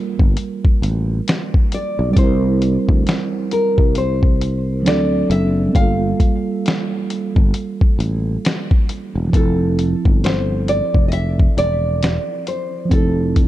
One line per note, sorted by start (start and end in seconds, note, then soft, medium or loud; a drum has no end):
0.00 2.09 G3 medium
0.00 2.11 A#3 medium
0.00 2.13 F4 medium
0.00 1.23 A#4 medium
0.00 2.15 A#4 medium
0.19 0.34 G1 medium
0.19 kick loud
0.37 closed hi-hat medium
0.65 kick medium
0.82 1.20 A1 medium
0.82 closed hi-hat medium
1.28 snare loud
1.28 closed hi-hat medium
1.54 kick medium
1.72 2.12 D5 medium
1.72 closed hi-hat medium
1.99 2.14 B1 medium
2.10 4.78 G3 medium
2.10 2.18 D5 medium
2.14 2.77 C2 loud
2.14 4.80 C4 medium
2.14 kick loud
2.14 closed hi-hat medium
2.19 4.82 E4 medium
2.19 3.52 C5 medium
2.23 4.85 A#4 medium
2.62 closed hi-hat medium
2.89 3.03 D2 medium
2.89 kick loud
3.07 snare loud
3.07 closed hi-hat medium
3.51 3.97 A#4 medium
3.51 closed hi-hat medium
3.78 4.85 C2 medium
3.78 kick loud
3.95 4.87 C5 medium
3.95 closed hi-hat medium
4.23 kick medium
4.41 closed hi-hat medium
4.83 5.23 D2 loud
4.83 5.73 F#3 medium
4.83 5.75 C4 medium
4.83 closed hi-hat medium
4.87 5.76 D4 medium
4.87 5.77 A4 medium
4.87 5.31 D5 medium
4.87 snare loud
5.30 5.67 F#1 medium
5.30 5.75 E5 loud
5.30 closed hi-hat medium
5.69 9.26 G3 medium
5.69 9.28 A#3 medium
5.75 6.12 G1 medium
5.75 9.30 F4 medium
5.75 8.40 F5 loud
5.75 kick loud
5.75 closed hi-hat medium
5.81 9.32 A4 medium
6.20 kick medium
6.20 closed hi-hat medium
6.66 snare loud
6.66 closed hi-hat medium
7.10 closed hi-hat medium
7.36 7.51 G1 loud
7.36 kick loud
7.54 closed hi-hat medium
7.81 kick medium
7.99 8.36 A1 medium
7.99 closed hi-hat medium
8.45 snare loud
8.45 closed hi-hat medium
8.71 kick loud
8.89 closed hi-hat medium
9.15 9.30 E1 medium
9.28 12.84 F3 medium
9.32 9.93 F1 loud
9.32 12.87 C4 medium
9.32 10.24 A4 medium
9.32 kick loud
9.32 closed hi-hat medium
9.37 12.89 E4 medium
9.37 12.91 A4 medium
9.79 closed hi-hat medium
10.05 10.80 G1 medium
10.05 kick medium
10.24 10.70 C5 medium
10.24 snare loud
10.24 closed hi-hat medium
10.68 11.08 D5 medium
10.68 closed hi-hat medium
10.95 11.47 F1 medium
10.95 kick medium
11.08 11.13 D#5 medium
11.08 closed hi-hat medium
11.13 11.58 E5 loud
11.39 kick medium
11.57 12.17 E1 medium
11.57 12.48 D5 loud
11.57 closed hi-hat medium
12.03 snare loud
12.03 closed hi-hat medium
12.47 12.93 C5 medium
12.47 closed hi-hat medium
12.85 13.48 F3 medium
12.89 13.48 F1 medium
12.89 13.48 C4 medium
12.89 13.48 A4 medium
12.89 kick loud
12.89 closed hi-hat medium
12.94 13.48 E4 medium
12.98 13.48 A4 medium
13.36 kick medium
13.36 closed hi-hat medium